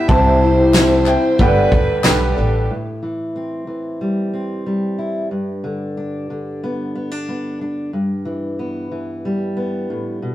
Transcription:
Already playing: grand piano G3 B3 E4 B4, upright piano G5
0.08 upright bass C2, grand piano C2 C3 G3 C4 E4 C5, twelve-string acoustic guitar C3 G3 C4 E4 G4, fiddle C5, upright piano A5, kick
0.42 twelve-string acoustic guitar C4 E4 G4
0.74 twelve-string acoustic guitar G3 C4 E4 G4, grand piano G3 C4 E4 C5, snare, clap, tambourine
1.06 twelve-string acoustic guitar C4 E4 G4, upright piano G5, clap
1.39 upright bass G1, grand piano G1 G2 G3 D4 A4 B4, twelve-string acoustic guitar G2 D3 G3 B3 D4 A4, fiddle B4, upright piano G5, kick
1.72 upright bass D2, twelve-string acoustic guitar G3 B3 D4 A4, kick
2.03 upright bass B1, twelve-string acoustic guitar G3 B3 D4 A4, grand piano G3 D4 A4 B4, fiddle G4, snare, clap, tambourine
2.36 upright bass A1, twelve-string acoustic guitar G3 B3 D4 A4
2.70 steel-string acoustic guitar A2
3.03 steel-string acoustic guitar E3
3.36 steel-string acoustic guitar C4
3.67 steel-string acoustic guitar E3
4.01 steel-string acoustic guitar G3
4.33 steel-string acoustic guitar C4
4.66 steel-string acoustic guitar G3
4.98 steel-string acoustic guitar E4
5.31 steel-string acoustic guitar G2
5.64 steel-string acoustic guitar D3
5.97 steel-string acoustic guitar D4
6.30 steel-string acoustic guitar D3
6.64 steel-string acoustic guitar B3
6.95 steel-string acoustic guitar B3
7.12 steel-string acoustic guitar D4
7.28 steel-string acoustic guitar B3
7.61 steel-string acoustic guitar D4
7.93 steel-string acoustic guitar G2
8.25 steel-string acoustic guitar E3
8.59 steel-string acoustic guitar B3
8.91 steel-string acoustic guitar E3
9.25 steel-string acoustic guitar G3
9.57 steel-string acoustic guitar B3
9.90 steel-string acoustic guitar A2
10.22 steel-string acoustic guitar B2

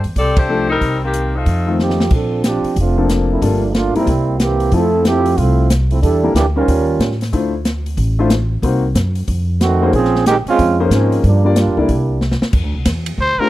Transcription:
0.04 upright bass E2, open hi-hat
0.16 upright bass C2, saxophone section C4 G4 A4 D5, kick, open hi-hat
0.37 saxophone section A3 D4 G4 C5, kick, ride
0.49 upright piano F3 A3 D4 A4
0.69 saxophone section G3 C4 D#4 A#4
0.81 upright bass C2, kick, open hi-hat
1.03 saxophone section D#3 A#3 C4 G4
1.14 closed hi-hat
1.36 saxophone section A3 C4 D#4 F4
1.46 upright bass F2, kick, open hi-hat
1.67 upright piano D#3 A3 C4 F4
1.79 trombone section F3 C4 D#4 G4, snare
1.90 snare
2.00 snare
2.10 upright bass A#1, trombone section F3 C4 D4 A4, kick, crash
2.44 trombone section F3 C4 D4 G4, snare, closed hi-hat
2.64 muted upright bass stroke, open hi-hat
2.76 upright bass F1, trombone section A3 C4 D4 F4, kick, open hi-hat
2.97 upright piano F3 A#3 C4 D4 A4
3.09 snare, closed hi-hat
3.31 trombone section F3 A3 C4 E4
3.42 upright bass G1, trombone section F3 A3 A#3 D4, upright piano G3 A#3 D4 F4 A4, kick, open hi-hat
3.74 trombone section A3 A#3 D4 F4, snare, closed hi-hat
3.95 upright piano G3 A#3 C4 E4 A#4, trombone section G3 A#3 C4 E4, muted upright bass stroke, open hi-hat
4.06 upright bass C2, kick, open hi-hat
4.40 trombone section E3 A#3 C4 G4, snare, closed hi-hat
4.60 open hi-hat
4.72 upright bass F2, upright piano F3 A3 C4 E4 A4, trombone section F3 C4 E4 A4, kick, open hi-hat
5.05 trombone section F3 C4 E4 G4, snare, closed hi-hat
5.26 open hi-hat
5.38 upright bass C2, trombone section A3 C4 E4 F4, kick, open hi-hat
5.70 snare, closed hi-hat
5.90 trombone section F3 A3 C4 E4, open hi-hat
6.01 upright bass E2, trombone section G3 D4 E4 A4, kick, open hi-hat
6.24 upright piano G3 A#3 D4 E4 A#4
6.34 upright bass D2, trombone section E3 A#3 D4 G4, snare, closed hi-hat
6.56 upright piano G3 C#4 D#4 F4 C5, trombone section G3 C#4 F4 A#4
6.68 upright bass D#2, kick, open hi-hat
7.00 upright bass A2, snare, closed hi-hat
7.11 snare
7.21 snare, open hi-hat
7.33 upright bass D2, upright piano A3 D4 E4 F4 C5, kick, open hi-hat
7.65 snare, closed hi-hat
7.86 open hi-hat
7.97 upright bass A1, kick, open hi-hat
8.19 upright piano A3 D4 E4 F4 C5
8.30 snare, closed hi-hat
8.62 upright bass C2, upright piano A#3 C4 D#4 F#4 C5, kick, open hi-hat
8.95 upright bass F#2, snare, closed hi-hat
9.15 open hi-hat
9.28 upright bass F2, kick, open hi-hat
9.61 trombone section D#3 A3 C4 F#4, snare, closed hi-hat
9.82 upright piano A#3 C#4 D#4 G#4 C5
9.93 upright bass A#1, trombone section F3 C4 C#4 G#4, kick, open hi-hat
10.05 snare
10.15 snare
10.26 trombone section D#3 G#3 C4 G4, snare, closed hi-hat
10.46 trombone section G#3 C4 C#4 F4, muted upright bass stroke, open hi-hat
10.59 upright bass F2, kick, open hi-hat
10.80 upright piano A#3 C#4 D#4 G#4 C5
10.90 upright bass G#2, trombone section F3 G#3 C4 C#4, snare, closed hi-hat
11.12 open hi-hat
11.24 upright bass G2, trombone section F3 G3 A#3 D4, kick, open hi-hat
11.45 upright piano A#3 D4 F4 G4 D5
11.56 trombone section G3 A#3 D4 F4, snare, closed hi-hat
11.67 upright bass F2
11.77 upright bass C#2, trombone section G3 A#3 D4 E4, upright piano A#3 D4 E4 A4 D5
11.89 upright bass C2, kick, open hi-hat
12.21 snare
12.31 snare
12.41 muted upright bass stroke, snare
12.53 upright bass F2, kick, crash
12.63 upright bass D2
12.74 upright bass C2
12.85 upright bass E2, kick, snare, hi-hat pedal, ride
13.06 ride
13.18 upright bass D2, trumpet C5, kick
13.38 upright piano A3 D4 F4 G4 C5, trumpet A#4, muted upright bass stroke

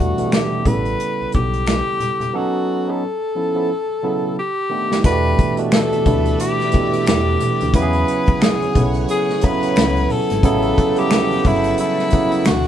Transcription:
Already playing: fm bass E2, tine electric piano B2 E3 G3 A3 D4, tenor saxophone F#4
0.00 closed hi-hat
0.18 fm bass A1, tine electric piano B2 E3 A3 D4 F#4, closed hi-hat, high conga
0.26 tine electric piano G4
0.32 tenor saxophone G4, finger snap, snare, closed hi-hat, muted conga
0.52 high conga
0.65 fm bass A1, tine electric piano C#3 G3 B3 E4 G#4, tenor saxophone B4, kick, closed hi-hat, high conga, low conga
0.73 tine electric piano A4
0.85 closed hi-hat
0.99 closed hi-hat, muted conga
1.22 fm bass B1
1.32 fm bass B1, tenor saxophone G4, kick, closed hi-hat, high conga
1.53 closed hi-hat
1.66 finger snap, snare, closed hi-hat, high conga
1.87 muted conga
2.00 closed hi-hat, low conga
2.20 closed hi-hat, low conga
2.33 tine electric piano F#3 B3 C#4 D#4 A4, tenor saxophone F#4
2.87 tine electric piano F#3 B3 C#4 D#4 B4, tenor saxophone A4
3.35 tine electric piano F3 B3 C#4 E4 A4
3.55 tine electric piano F3 B3 C#4 E4 A4
4.03 tine electric piano C#3 F#3 B3 E4 A4
4.39 tenor saxophone G4
4.69 tine electric piano D#3 A3 B3 D4 G4
4.92 snare
5.03 fm bass E2, tine electric piano B2 E3 A3 D4 F#4, string machine B4 D5 E5, tenor saxophone B4, kick, closed hi-hat, muted conga
5.12 tine electric piano G4
5.24 muted conga
5.39 kick, closed hi-hat
5.57 tine electric piano B2 E3 A3 D4 F#4, closed hi-hat
5.71 tenor saxophone A4, finger snap, snare, closed hi-hat, muted conga
5.92 closed hi-hat, muted conga, high conga
6.05 fm bass D2, tine electric piano B2 E3 A3 D4 E4, kick, closed hi-hat, high conga, low conga
6.26 closed hi-hat
6.40 tenor saxophone G4, closed hi-hat
6.59 snare, closed hi-hat, muted conga
6.72 tine electric piano B2 E3 A3 D4 G4, kick, closed hi-hat, high conga
6.81 tine electric piano A4
6.93 closed hi-hat
7.06 fm bass E2, tenor saxophone G4, finger snap, snare, closed hi-hat, high conga
7.27 muted conga
7.40 closed hi-hat, low conga
7.61 fm bass D2, closed hi-hat
7.74 fm bass E2, tine electric piano C#3 F#3 B3 E4 G4, tenor saxophone B4, string machine C#5 F#5 G#5, kick, closed hi-hat
7.82 tine electric piano G#4
7.93 closed hi-hat, muted conga
8.08 closed hi-hat
8.27 kick, closed hi-hat
8.41 tenor saxophone G#4, finger snap, snare, closed hi-hat, muted conga
8.61 closed hi-hat, muted conga, high conga
8.75 fm bass B1, tine electric piano C#3 F#3 B3 E4 A4, kick, closed hi-hat, high conga, low conga
8.83 tine electric piano B4
8.94 closed hi-hat
9.09 tenor saxophone G#4, closed hi-hat, muted conga
9.29 snare, muted conga
9.41 tine electric piano C#3 F#3 B3 E4 A4, tenor saxophone B4, kick, closed hi-hat, high conga
9.51 tine electric piano B4
9.63 closed hi-hat
9.76 fm bass C#2, finger snap, snare, closed hi-hat, muted conga, high conga
9.97 closed hi-hat
10.08 tenor saxophone A4, open hi-hat, low conga
10.30 fm bass G#1, snare, closed hi-hat
10.43 fm bass A1, tine electric piano C#3 F#3 B3 E4 A4, tenor saxophone A4, string machine B4 G5 A5 C#6, kick, closed hi-hat
10.62 closed hi-hat, muted conga
10.78 kick, closed hi-hat
10.96 tine electric piano C#3 G3 B3 E4 A4, tenor saxophone G4, closed hi-hat
11.10 finger snap, snare, closed hi-hat, muted conga
11.31 closed hi-hat, muted conga, high conga
11.44 fm bass G1, tine electric piano C#3 F#3 B3 E4 A4, tenor saxophone E4, kick, closed hi-hat, high conga, low conga
11.64 closed hi-hat
11.78 tenor saxophone E4, closed hi-hat, muted conga
11.98 snare, muted conga
12.10 tine electric piano C#3 F#3 B3 E4 B4, kick, closed hi-hat, high conga
12.32 closed hi-hat
12.45 fm bass D2, tine electric piano B2 E3 A3 D4 F#4, tenor saxophone F#4, string machine C5 E5 F#5 D6, finger snap, snare, closed hi-hat, muted conga, high conga

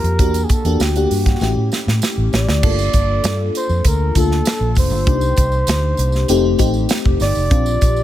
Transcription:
Already playing: fm electric piano A#3 D4 F4 G4, flugelhorn A#4
0.03 fingered electric bass F2, closed hi-hat
0.19 fingered electric bass E2, fm electric piano A#3 D4 F#4 G4, kick, closed hi-hat
0.34 closed hi-hat, tambourine
0.45 flugelhorn G#4
0.49 flugelhorn A4, kick, closed hi-hat, tambourine
0.64 fingered electric bass E2, fm electric piano A#3 D4 F#4 G4, closed hi-hat, tambourine
0.80 fingered electric bass D2, flugelhorn G4, snare, tambourine
0.96 fm electric piano A#3 D4 G4 F#5, closed hi-hat
1.11 fingered electric bass G2, open hi-hat, tambourine
1.26 kick, snare, closed hi-hat
1.41 fingered electric bass A1, fm electric piano A3 C#4 E4 G4, snare, tambourine
1.56 fingered electric bass A2
1.72 snare, tambourine
1.87 fingered electric bass A2, snare
2.02 snare, tambourine
2.17 fingered electric bass A1
2.33 fingered electric bass A1, flugelhorn D5, snare, tambourine
2.48 fingered electric bass D2, snare
2.63 fingered electric bass G1, fm electric piano A#3 D4 F4 A4, kick, crash
2.79 tambourine
2.93 fingered electric bass G1, kick, closed hi-hat, tambourine
3.24 fingered electric bass G2, snare, closed hi-hat, tambourine
3.55 flugelhorn C5, closed hi-hat, tambourine
3.69 fingered electric bass F2, tambourine
3.85 fingered electric bass D2, flugelhorn A#4, kick, closed hi-hat, tambourine
4.15 fingered electric bass D2, fm electric piano A#3 D4 F4 A4, flugelhorn A4, kick, closed hi-hat, tambourine
4.31 snare
4.45 snare, closed hi-hat, tambourine
4.60 fingered electric bass A#1
4.75 fingered electric bass F1, flugelhorn C5, kick, open hi-hat, tambourine
4.90 fingered electric bass G1, tambourine
5.06 fingered electric bass C2, fm electric piano A#3 D4 D#4 G4, kick, closed hi-hat
5.21 tambourine
5.36 fingered electric bass C2, kick, closed hi-hat, tambourine
5.52 tambourine
5.67 fingered electric bass D2, snare, closed hi-hat, tambourine
5.97 fingered electric bass C2, closed hi-hat, tambourine
6.12 snare, tambourine
6.28 fingered electric bass F1, fm electric piano A3 C4 D#4 G4, closed hi-hat, tambourine
6.58 fingered electric bass A1, fm electric piano A3 C4 D#4 G4, kick, closed hi-hat, tambourine
6.74 tambourine
6.89 snare, closed hi-hat, tambourine
7.05 fingered electric bass F1, kick
7.20 fingered electric bass G1, flugelhorn D5, snare, open hi-hat, tambourine
7.35 fingered electric bass F1, tambourine
7.50 fingered electric bass A#1, fm electric piano C4 D4 F4 G4, kick, closed hi-hat
7.66 tambourine
7.81 fingered electric bass A#1, kick, closed hi-hat, tambourine
7.96 tambourine

